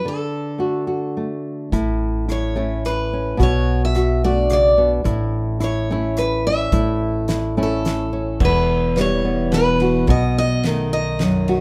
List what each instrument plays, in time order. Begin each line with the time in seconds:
0.05 nylon-string guitar D3, steel-string acoustic guitar A4
0.58 nylon-string guitar A3 F#4
0.87 nylon-string guitar F#4
1.17 nylon-string guitar A3
1.72 upright bass A1, nylon-string guitar A2 E4, kick, closed hi-hat
2.28 nylon-string guitar E4, steel-string acoustic guitar C#5, cross-stick, closed hi-hat
2.55 nylon-string guitar A3 C#4 E4
2.85 steel-string acoustic guitar B4, cross-stick, closed hi-hat
3.13 nylon-string guitar C#4
3.37 upright bass B1, nylon-string guitar B2 F#4, kick, closed hi-hat
3.43 steel-string acoustic guitar C#5
3.85 steel-string acoustic guitar E5
3.95 nylon-string guitar F#4, cross-stick, closed hi-hat
4.24 nylon-string guitar A3 D4 F#4, steel-string acoustic guitar D5
4.50 nylon-string guitar C#3, steel-string acoustic guitar D5, cross-stick, closed hi-hat
4.78 nylon-string guitar B2
5.04 upright bass A1, nylon-string guitar A2 E4, kick, closed hi-hat
5.60 nylon-string guitar E4, steel-string acoustic guitar C#5, cross-stick, closed hi-hat
5.90 nylon-string guitar A3 C#4 E4
6.17 steel-string acoustic guitar B4, cross-stick, closed hi-hat
6.47 nylon-string guitar C#4, steel-string acoustic guitar E5
6.72 upright bass A1, nylon-string guitar A2 E4, kick, closed hi-hat
7.28 nylon-string guitar E4, snare, closed hi-hat
7.38 steel-string acoustic guitar D5
7.57 nylon-string guitar A3 C#4 E4
7.63 steel-string acoustic guitar A4
7.85 snare, closed hi-hat
8.13 nylon-string guitar C#4
8.40 upright bass E1, nylon-string guitar E2, kick, crash
8.45 steel-string acoustic guitar B4
8.96 nylon-string guitar E3 G3, snare, ride
9.01 steel-string acoustic guitar C#5
9.25 nylon-string guitar B3
9.51 nylon-string guitar B2, steel-string acoustic guitar B4, snare, ride
9.80 nylon-string guitar F#4, ride
10.07 upright bass B1, nylon-string guitar B2, steel-string acoustic guitar D#5, kick, ride
10.38 steel-string acoustic guitar D#5
10.63 nylon-string guitar D#3 A3, snare, ride
10.93 nylon-string guitar D#4, steel-string acoustic guitar D#5
11.19 nylon-string guitar F#2, snare, ride
11.48 nylon-string guitar F#4, ride